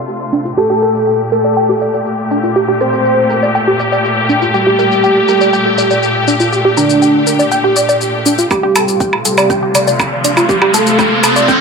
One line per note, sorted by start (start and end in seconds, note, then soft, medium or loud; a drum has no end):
0.00 0.53 C3 medium
0.00 0.53 A3 medium
0.00 0.53 F4 medium
0.08 shaker soft
0.33 0.40 D4 medium
0.33 shaker medium
0.45 0.53 F4 medium
0.45 shaker soft
0.57 8.47 A#2 medium
0.57 8.47 A3 medium
0.57 8.47 G4 medium
0.57 0.65 G4 loud
0.57 1.22 A4 loud
0.57 shaker soft
0.70 0.81 G4 loud
0.82 0.90 A#4 loud
0.82 shaker medium
0.95 shaker soft
1.07 1.15 G5 medium
1.07 shaker soft
1.32 1.96 A4 medium
1.32 1.44 A#4 medium
1.32 shaker medium
1.44 1.56 D5 medium
1.44 shaker soft
1.57 1.64 G5 loud
1.57 shaker soft
1.69 1.81 G4 loud
1.81 1.86 D5 medium
1.81 shaker medium
1.94 2.02 D5 medium
1.94 shaker soft
2.06 shaker soft
2.31 2.39 D4 medium
2.31 shaker medium
2.44 2.51 F4 medium
2.44 shaker soft
2.56 2.64 G4 loud
2.56 shaker soft
2.68 2.80 G4 loud
2.81 2.88 A#4 medium
2.81 3.45 C5 medium
2.81 shaker medium
2.93 shaker soft
3.05 3.13 G5 medium
3.05 shaker soft
3.30 3.42 A#4 medium
3.30 shaker medium
3.43 3.54 D5 medium
3.43 shaker soft
3.55 3.63 G5 loud
3.55 shaker soft
3.68 3.79 G4 loud
3.80 3.84 D5 medium
3.80 shaker medium
3.92 4.00 D5 medium
3.92 shaker soft
4.05 shaker soft
4.29 4.37 D4 medium
4.29 shaker medium
4.42 4.50 F4 medium
4.42 shaker soft
4.54 5.19 G4 loud
4.54 4.62 G4 loud
4.54 shaker soft
4.67 4.78 G4 loud
4.79 4.87 A#4 medium
4.79 shaker medium
4.91 shaker soft
5.04 5.12 G5 medium
5.04 shaker soft
5.28 5.93 G4 loud
5.28 5.40 A#4 medium
5.28 shaker medium
5.41 5.52 D5 medium
5.41 shaker soft
5.53 5.61 G5 loud
5.53 shaker soft
5.66 5.77 G4 medium
5.78 5.83 D5 medium
5.78 shaker medium
5.91 5.98 D5 medium
5.91 shaker soft
6.03 shaker soft
6.28 6.35 D4 medium
6.28 shaker medium
6.40 6.48 F4 medium
6.40 shaker soft
6.52 6.60 G4 loud
6.52 shaker soft
6.65 6.76 G4 loud
6.77 7.42 D4 medium
6.77 6.85 A#4 medium
6.77 shaker medium
6.90 shaker soft
7.02 7.10 G5 medium
7.02 shaker soft
7.27 7.39 A#4 medium
7.27 shaker medium
7.39 7.51 D5 medium
7.39 shaker soft
7.52 7.59 G5 loud
7.52 shaker soft
7.64 7.76 G4 loud
7.76 7.81 D5 medium
7.76 shaker medium
7.89 7.97 D5 medium
7.89 shaker soft
8.01 shaker soft
8.26 8.34 D4 medium
8.26 shaker medium
8.38 8.46 F4 medium
8.38 shaker soft
8.51 11.61 C3 medium
8.51 11.61 A3 medium
8.51 11.61 F4 medium
8.51 9.15 G4 medium
8.51 8.59 G4 loud
8.51 kick loud
8.51 riser medium
8.51 low woodblock soft
8.51 shaker soft
8.63 8.75 G4 loud
8.76 8.83 A4 medium
8.76 closed hi-hat loud
8.76 low woodblock medium
8.76 shaker medium
8.88 shaker soft
9.00 9.08 G5 medium
9.00 kick loud
9.00 shaker soft
9.13 low woodblock soft
9.25 9.90 G4 medium
9.25 9.37 A4 medium
9.25 closed hi-hat loud
9.25 shaker medium
9.38 9.49 D5 medium
9.38 low woodblock medium
9.38 shaker soft
9.50 9.58 G5 medium
9.50 kick loud
9.50 shaker soft
9.63 9.74 G4 medium
9.75 9.80 D5 medium
9.75 closed hi-hat loud
9.75 low woodblock medium
9.75 shaker medium
9.87 9.95 D5 medium
9.87 shaker soft
10.00 kick loud
10.00 low woodblock medium
10.00 shaker soft
10.24 10.32 D4 medium
10.24 closed hi-hat loud
10.24 shaker medium
10.37 10.45 F4 medium
10.37 low woodblock soft
10.37 shaker soft
10.49 10.57 G4 loud
10.49 kick loud
10.49 shaker soft
10.62 10.73 G4 loud
10.62 low woodblock medium
10.74 11.39 A4 medium
10.74 10.82 A4 loud
10.74 closed hi-hat loud
10.74 shaker medium
10.87 shaker soft
10.99 11.07 G5 medium
10.99 kick loud
10.99 low woodblock soft
10.99 shaker soft
11.24 11.35 A4 medium
11.24 closed hi-hat loud
11.24 low woodblock medium
11.24 shaker medium
11.36 11.48 D5 medium
11.36 shaker soft
11.48 11.56 G5 loud
11.48 kick loud
11.48 shaker soft